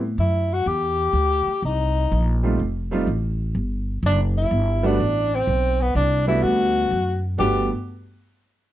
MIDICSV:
0, 0, Header, 1, 5, 480
1, 0, Start_track
1, 0, Key_signature, 1, "major"
1, 0, Tempo, 480000
1, 1625, Time_signature, 4, 2, 24, 8
1, 8726, End_track
2, 0, Start_track
2, 0, Title_t, "Tenor saxophone"
2, 0, Program_c, 0, 66
2, 196, Note_on_c, 0, 64, 81
2, 530, Note_on_c, 0, 66, 88
2, 545, Note_off_c, 0, 64, 0
2, 675, Note_on_c, 0, 67, 103
2, 690, Note_off_c, 0, 66, 0
2, 1631, Note_off_c, 0, 67, 0
2, 1652, Note_on_c, 0, 63, 90
2, 2401, Note_off_c, 0, 63, 0
2, 4062, Note_on_c, 0, 62, 78
2, 4199, Note_off_c, 0, 62, 0
2, 4374, Note_on_c, 0, 64, 85
2, 4863, Note_on_c, 0, 62, 92
2, 4878, Note_off_c, 0, 64, 0
2, 5349, Note_on_c, 0, 60, 99
2, 5364, Note_off_c, 0, 62, 0
2, 5815, Note_on_c, 0, 59, 85
2, 5830, Note_off_c, 0, 60, 0
2, 5954, Note_off_c, 0, 59, 0
2, 5960, Note_on_c, 0, 62, 92
2, 6254, Note_off_c, 0, 62, 0
2, 6278, Note_on_c, 0, 64, 91
2, 6427, Note_on_c, 0, 66, 96
2, 6442, Note_off_c, 0, 64, 0
2, 7228, Note_off_c, 0, 66, 0
2, 7394, Note_on_c, 0, 67, 93
2, 7690, Note_off_c, 0, 67, 0
2, 8726, End_track
3, 0, Start_track
3, 0, Title_t, "Grand piano"
3, 0, Program_c, 1, 0
3, 2428, Note_on_c, 1, 55, 67
3, 2436, Note_on_c, 1, 60, 56
3, 2438, Note_on_c, 1, 57, 67
3, 2443, Note_on_c, 1, 63, 63
3, 2449, Note_on_c, 1, 65, 70
3, 2570, Note_off_c, 1, 55, 0
3, 2574, Note_off_c, 1, 60, 0
3, 2575, Note_off_c, 1, 57, 0
3, 2578, Note_off_c, 1, 63, 0
3, 2581, Note_off_c, 1, 65, 0
3, 2912, Note_on_c, 1, 55, 79
3, 2916, Note_on_c, 1, 57, 69
3, 2919, Note_on_c, 1, 60, 72
3, 2922, Note_on_c, 1, 63, 70
3, 2928, Note_on_c, 1, 65, 83
3, 3052, Note_off_c, 1, 55, 0
3, 3055, Note_off_c, 1, 57, 0
3, 3056, Note_off_c, 1, 60, 0
3, 3058, Note_off_c, 1, 63, 0
3, 3060, Note_off_c, 1, 65, 0
3, 4827, Note_on_c, 1, 55, 83
3, 4834, Note_on_c, 1, 57, 78
3, 4834, Note_on_c, 1, 59, 78
3, 4841, Note_on_c, 1, 62, 75
3, 4844, Note_on_c, 1, 66, 89
3, 4970, Note_off_c, 1, 55, 0
3, 4974, Note_off_c, 1, 57, 0
3, 4974, Note_off_c, 1, 59, 0
3, 4978, Note_off_c, 1, 62, 0
3, 4979, Note_off_c, 1, 66, 0
3, 6268, Note_on_c, 1, 55, 61
3, 6269, Note_on_c, 1, 57, 61
3, 6274, Note_on_c, 1, 59, 64
3, 6280, Note_on_c, 1, 62, 56
3, 6281, Note_on_c, 1, 66, 74
3, 6874, Note_off_c, 1, 55, 0
3, 6875, Note_off_c, 1, 57, 0
3, 6878, Note_off_c, 1, 59, 0
3, 6880, Note_off_c, 1, 62, 0
3, 6881, Note_off_c, 1, 66, 0
3, 7378, Note_on_c, 1, 55, 67
3, 7381, Note_on_c, 1, 57, 59
3, 7384, Note_on_c, 1, 62, 64
3, 7385, Note_on_c, 1, 59, 64
3, 7391, Note_on_c, 1, 66, 76
3, 7672, Note_off_c, 1, 55, 0
3, 7673, Note_off_c, 1, 57, 0
3, 7675, Note_off_c, 1, 59, 0
3, 7675, Note_off_c, 1, 62, 0
3, 7678, Note_off_c, 1, 66, 0
3, 8726, End_track
4, 0, Start_track
4, 0, Title_t, "Upright bass"
4, 0, Program_c, 2, 32
4, 0, Note_on_c, 2, 45, 76
4, 162, Note_off_c, 2, 45, 0
4, 181, Note_on_c, 2, 42, 97
4, 648, Note_off_c, 2, 42, 0
4, 661, Note_on_c, 2, 40, 83
4, 1125, Note_off_c, 2, 40, 0
4, 1131, Note_on_c, 2, 38, 83
4, 1437, Note_off_c, 2, 38, 0
4, 1624, Note_on_c, 2, 36, 84
4, 2091, Note_off_c, 2, 36, 0
4, 2115, Note_on_c, 2, 34, 93
4, 2577, Note_off_c, 2, 34, 0
4, 2595, Note_on_c, 2, 29, 83
4, 3057, Note_off_c, 2, 29, 0
4, 3070, Note_on_c, 2, 33, 86
4, 3534, Note_off_c, 2, 33, 0
4, 3547, Note_on_c, 2, 31, 81
4, 4013, Note_off_c, 2, 31, 0
4, 4026, Note_on_c, 2, 30, 95
4, 4493, Note_off_c, 2, 30, 0
4, 4509, Note_on_c, 2, 31, 88
4, 4974, Note_off_c, 2, 31, 0
4, 4995, Note_on_c, 2, 33, 83
4, 5457, Note_off_c, 2, 33, 0
4, 5473, Note_on_c, 2, 35, 90
4, 5936, Note_off_c, 2, 35, 0
4, 5951, Note_on_c, 2, 36, 94
4, 6414, Note_off_c, 2, 36, 0
4, 6433, Note_on_c, 2, 38, 81
4, 6895, Note_off_c, 2, 38, 0
4, 6912, Note_on_c, 2, 42, 83
4, 7374, Note_off_c, 2, 42, 0
4, 7385, Note_on_c, 2, 31, 91
4, 7685, Note_off_c, 2, 31, 0
4, 8726, End_track
5, 0, Start_track
5, 0, Title_t, "Muted upright bass strokes"
5, 1465, Note_on_c, 9, 29, 38
5, 1565, Note_off_c, 9, 29, 0
5, 8726, End_track
0, 0, End_of_file